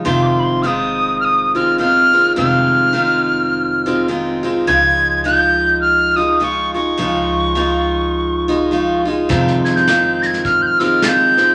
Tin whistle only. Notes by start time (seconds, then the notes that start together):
0.05 C6
0.22 D6
0.27 C6
0.39 B5
0.44 C6
0.62 D#6 F6
1.20 F6
1.25 D#6
1.55 F6
1.79 F6
2.38 F6
4.67 G#6
5.26 G6
5.81 F6
6.16 D#6
6.39 D#6
6.44 C#6
6.74 C#6
9.65 G#6
9.76 G6
10.22 A#6
10.26 G#6
10.45 F6
10.62 G6
10.67 F6
10.79 E6
10.84 F6
11.04 A6
11.08 G6